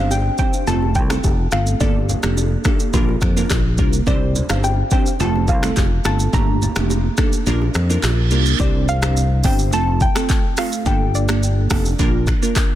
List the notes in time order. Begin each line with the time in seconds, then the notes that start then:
Already playing: G1 C4 D4 G4 C5 F5
0.11 G5, high bongo, shaker
0.38 C4 D4 G4 C5 G5, kick, low bongo, shaker
0.53 shaker
0.67 F1 A3 C4 F4 A4 A5, high bongo, low conga, shaker
0.82 high bongo
0.95 C2 G5, kick, shaker
1.10 A3 C4 F4 A4, finger snap, cross-stick, low bongo, shaker
1.24 F1, kick, high bongo, shaker
1.51 G1 A3 C4 F4 A4 F5, finger snap, cross-stick, shaker
1.67 shaker
1.80 G1 A#3 D4 G4 A4 D5, kick, low conga, shaker
2.09 low bongo, low conga, shaker
2.23 F1 A#3 D4 G4 A4, finger snap, cross-stick, low bongo, shaker
2.37 high bongo, shaker
2.64 A#3 D4 G4 A4, finger snap, kick, cross-stick, low bongo, shaker
2.80 shaker
2.93 A#1 A#3 D4 F4 A#4, kick, high bongo, low conga, shaker
3.09 high bongo
3.21 F2, finger snap, kick, cross-stick, shaker
3.36 A#3 D4 F4 A#4, low bongo, shaker
3.50 A#1, finger snap, kick, cross-stick, clap, high bongo, shaker
3.78 C2 A#3 D4 F4 A#4, kick, shaker
3.93 shaker
4.07 C2 C4 D4 G4 C5 D5, kick, low conga, shaker
4.36 low bongo, low conga, shaker
4.49 G1 C4 D4 G4 C5 F5, finger snap, cross-stick, low bongo, shaker
4.64 G5, high bongo, shaker
4.91 C4 D4 G4 C5 G5, kick, low bongo, shaker
5.06 shaker
5.20 F1 A3 C4 F4 A4 A5, high bongo, low conga, shaker
5.35 high bongo
5.48 C2 F5, kick, shaker
5.63 A3 C4 F4 A4, finger snap, cross-stick, low bongo, shaker
5.76 F1, kick, clap, high bongo, shaker
6.04 G1 A3 C4 F4 A4 A5, finger snap, cross-stick, shaker
6.19 shaker
6.33 G1 A3 A#3 D4 G4 A#5, kick, low conga, shaker
6.62 low bongo, low conga, shaker
6.76 F1 A3 A#3 D4 G4, finger snap, cross-stick, low bongo, shaker
6.90 high bongo, shaker
7.17 A#3 D4 G4 A4, finger snap, kick, cross-stick, low bongo, shaker
7.33 shaker
7.46 A#1 A#3 D4 F4 A#4, reverse cymbal, high bongo, low conga, shaker
7.62 high bongo
7.74 F2, finger snap, cross-stick, shaker
7.89 A#3 D4 F4 A#4, low bongo, shaker
8.03 A#1, finger snap, cross-stick, clap, high bongo, shaker
8.31 C2 A#3 D4 F4 A#4, shaker
8.46 shaker
8.59 C2 C4 D4 G4 C5 D5, kick, impact, shaker
8.88 F5, shaker
9.02 C4 D4 G4 C5, finger snap, cross-stick, shaker
9.17 shaker
9.44 G1 C4 D4 G4 C5 G5, kick, open hi-hat, shaker
9.59 shaker
9.73 F1 A3 C4 F4 A4 A5, shaker
10.00 G5, kick, shaker
10.15 A3 C4 F4 A4, finger snap, cross-stick, shaker
10.29 kick, clap, shaker
10.57 A3 C4 F4 A4 F5, finger snap, cross-stick, open hi-hat, shaker
10.72 shaker
10.86 G1 A#3 D4 G4 A4 G5, kick, shaker
11.15 D5, shaker
11.29 A#3 D4 G4 A4, finger snap, cross-stick, shaker
11.43 shaker
11.70 F1 A#3 D4 G4 A4, finger snap, kick, cross-stick, open hi-hat, shaker
11.85 shaker
11.99 A#1 A#3 D4 F4 A#4, kick, shaker
12.27 finger snap, kick, cross-stick, shaker
12.42 A#3 D4 F4 A#4, shaker
12.56 finger snap, kick, cross-stick, clap, shaker